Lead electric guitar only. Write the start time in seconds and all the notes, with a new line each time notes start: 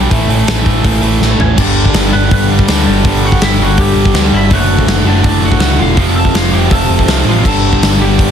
1.40 C#4 C#5
1.59 D4 D5
2.12 B3 B4
2.31 B3 B4
2.50 D4 D5
2.85 D4 D5
3.25 F#4 F#5
3.42 E4 E5
3.62 F#4 F#5
3.79 G4 G5
4.34 E4 E5
4.53 F#4 F#5
5.07 D4 D5
5.23 D4 D5
5.44 F#4 F#5
5.79 F4 F5
6.16 A4 A5
6.34 F4 F5
6.52 G4 G5
6.72 A4 A5
7.29 F4 F5
7.45 A4 A5
8.01 G4 G5